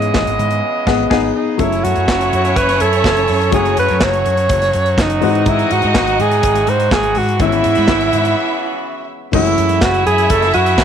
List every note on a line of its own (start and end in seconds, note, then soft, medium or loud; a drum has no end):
0.00 1.42 C#3 medium
0.00 0.60 E3 medium
0.00 1.42 E3 medium
0.00 1.42 G#3 medium
0.00 0.60 B3 medium
0.00 1.42 B3 medium
0.00 0.61 C#4 medium
0.00 0.61 D#4 medium
0.00 0.62 G#4 medium
0.00 1.42 D#5 medium
0.00 closed hi-hat soft
0.14 0.25 G#1 medium
0.14 kick loud
0.14 snare loud
0.14 clap medium
0.14 muted conga soft
0.14 high conga medium
0.27 0.37 G#1 medium
0.27 closed hi-hat soft
0.39 0.58 G#2 loud
0.39 closed hi-hat medium
0.39 high conga soft
0.39 low conga medium
0.51 closed hi-hat soft
0.87 1.04 G#1 loud
0.87 1.04 B3 medium
0.87 1.04 G#4 medium
0.87 kick loud
0.87 snare loud
0.87 crash medium
1.10 1.28 G#1 medium
1.10 1.28 B3 medium
1.10 1.34 D#4 medium
1.10 1.27 G#4 loud
1.10 kick loud
1.10 snare loud
1.10 crash medium
1.36 1.61 D#4 medium
1.57 1.79 F#1 loud
1.57 5.18 C#3 medium
1.57 3.48 F#3 medium
1.57 7.36 F#3 medium
1.57 3.48 A3 soft
1.57 5.18 A3 medium
1.57 4.94 C#4 medium
1.57 3.49 C#4 medium
1.57 3.51 E4 medium
1.57 3.49 E4 medium
1.57 1.86 E4 loud
1.57 3.49 A4 medium
1.57 4.93 C#5 loud
1.57 kick loud
1.57 closed hi-hat medium
1.72 closed hi-hat soft
1.84 1.94 F#2 medium
1.84 2.58 F#4 loud
1.84 closed hi-hat medium
1.96 2.06 F#2 medium
1.96 closed hi-hat soft
2.08 2.27 F#1 loud
2.08 kick loud
2.08 snare loud
2.08 clap medium
2.21 closed hi-hat soft
2.33 2.52 F#2 medium
2.33 closed hi-hat medium
2.45 closed hi-hat medium
2.56 2.76 F#1 loud
2.56 2.83 B4 medium
2.56 kick loud
2.56 closed hi-hat medium
2.69 snare soft
2.69 closed hi-hat medium
2.80 3.00 F#2 medium
2.80 3.53 A4 loud
2.80 closed hi-hat medium
2.93 closed hi-hat soft
3.04 3.24 F#1 loud
3.04 kick loud
3.04 snare loud
3.04 clap medium
3.17 closed hi-hat medium
3.28 3.49 F#2 medium
3.28 open hi-hat medium
3.42 closed hi-hat soft
3.51 3.72 F#1 loud
3.51 5.18 F#3 medium
3.51 5.18 A3 medium
3.51 5.18 C#4 medium
3.51 5.19 E4 soft
3.51 9.17 F#4 medium
3.51 5.19 F#4 medium
3.51 3.76 G#4 loud
3.51 kick loud
3.51 closed hi-hat medium
3.65 closed hi-hat soft
3.77 3.88 F#2 medium
3.77 4.05 B4 loud
3.77 closed hi-hat medium
3.88 4.00 F#2 loud
3.88 closed hi-hat soft
4.00 4.21 F#1 loud
4.00 5.02 C#5 loud
4.00 kick loud
4.00 snare loud
4.00 clap loud
4.13 closed hi-hat soft
4.26 4.45 F#2 medium
4.26 closed hi-hat medium
4.37 closed hi-hat medium
4.49 4.69 F#1 loud
4.49 kick loud
4.49 closed hi-hat loud
4.62 snare soft
4.62 closed hi-hat medium
4.73 4.94 F#2 loud
4.73 closed hi-hat medium
4.86 closed hi-hat soft
4.98 5.17 F#1 loud
4.98 5.50 D#4 loud
4.98 kick loud
4.98 snare loud
4.98 clap medium
5.10 closed hi-hat medium
5.21 5.61 G#2 loud
5.21 7.38 C3 medium
5.21 7.11 E3 medium
5.21 9.17 E3 medium
5.21 7.11 G#3 medium
5.21 7.12 C4 medium
5.21 7.11 D#4 medium
5.21 7.12 D#4 medium
5.21 7.13 F#4 medium
5.21 7.11 D#5 loud
5.21 open hi-hat medium
5.35 closed hi-hat soft
5.46 5.74 E4 medium
5.46 kick loud
5.46 closed hi-hat medium
5.46 muted conga soft
5.46 low conga medium
5.59 closed hi-hat soft
5.59 muted conga soft
5.71 5.81 G#2 medium
5.71 6.23 F#4 loud
5.71 closed hi-hat medium
5.82 5.93 G#2 loud
5.82 closed hi-hat soft
5.94 6.14 G#1 loud
5.94 kick loud
5.94 snare loud
5.94 clap medium
5.94 high conga medium
6.07 closed hi-hat soft
6.20 6.39 G#2 loud
6.20 6.71 G#4 loud
6.20 closed hi-hat medium
6.20 high conga medium
6.20 low conga medium
6.31 closed hi-hat soft
6.43 6.63 G#1 loud
6.43 kick loud
6.43 closed hi-hat loud
6.55 closed hi-hat medium
6.55 muted conga soft
6.67 6.87 G#2 loud
6.67 6.95 C5 medium
6.67 closed hi-hat medium
6.67 high conga medium
6.80 closed hi-hat soft
6.91 7.18 G#1 loud
6.91 7.19 G#4 loud
6.91 kick loud
6.91 snare loud
6.91 clap medium
6.91 muted conga soft
6.91 high conga loud
7.03 closed hi-hat soft
7.03 muted conga soft
7.03 high conga medium
7.15 7.42 G#2 medium
7.15 7.41 F#4 medium
7.15 open hi-hat medium
7.15 high conga medium
7.29 closed hi-hat soft
7.39 7.59 G#1 loud
7.39 9.17 C#3 medium
7.39 9.29 E3 medium
7.39 9.29 G#3 medium
7.39 9.17 B3 medium
7.39 9.30 B3 medium
7.39 9.30 C#4 medium
7.39 9.05 E4 loud
7.39 8.82 E4 loud
7.39 9.30 E4 medium
7.39 9.06 E5 loud
7.39 kick loud
7.39 closed hi-hat medium
7.39 low conga medium
7.52 closed hi-hat soft
7.52 muted conga soft
7.64 7.75 G#2 loud
7.64 closed hi-hat medium
7.75 7.90 G#2 loud
7.75 closed hi-hat soft
7.88 8.08 G#1 loud
7.88 kick loud
7.88 snare loud
7.88 clap medium
7.88 muted conga soft
7.88 high conga medium
8.01 closed hi-hat soft
8.13 8.32 G#2 loud
8.13 closed hi-hat medium
8.13 high conga soft
8.13 low conga medium
8.25 closed hi-hat medium
9.32 9.52 F#1 loud
9.32 10.84 C#3 medium
9.32 10.84 E3 medium
9.32 10.84 F#3 medium
9.32 10.84 G#3 medium
9.32 10.84 A3 medium
9.32 10.84 C#4 medium
9.32 10.84 E4 medium
9.32 9.84 E4 loud
9.32 10.84 F#4 medium
9.32 10.84 E5 loud
9.32 kick loud
9.32 crash loud
9.46 closed hi-hat soft
9.58 9.77 F#2 loud
9.58 closed hi-hat medium
9.69 closed hi-hat medium
9.81 10.01 F#1 loud
9.81 10.06 F#4 loud
9.81 kick loud
9.81 snare loud
9.81 clap medium
9.94 closed hi-hat soft
10.06 10.25 F#2 medium
10.06 10.33 G#4 loud
10.06 closed hi-hat medium
10.18 closed hi-hat medium
10.30 10.49 F#1 loud
10.30 10.54 A4 loud
10.30 kick loud
10.30 closed hi-hat loud
10.42 snare soft
10.42 closed hi-hat soft
10.54 10.78 F#2 medium
10.54 10.84 F#4 loud
10.54 closed hi-hat medium
10.66 closed hi-hat medium
10.78 10.84 D#2 loud
10.78 kick loud
10.78 snare loud
10.78 clap medium